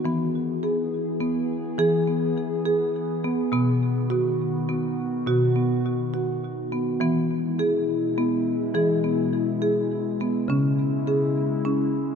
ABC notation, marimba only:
X:1
M:6/8
L:1/8
Q:3/8=69
K:E
V:1 name="Marimba"
B,2 G2 B,2 | G B,2 G2 B, | B,2 F2 B,2 | F B,2 F2 B, |
B,2 G2 B,2 | G B,2 G2 B, | C2 G2 C2 |]
V:2 name="Marimba" clef=bass
E,6 | E,6 | B,,6 | B,,6 |
E,6 | E,6 | C,6 |]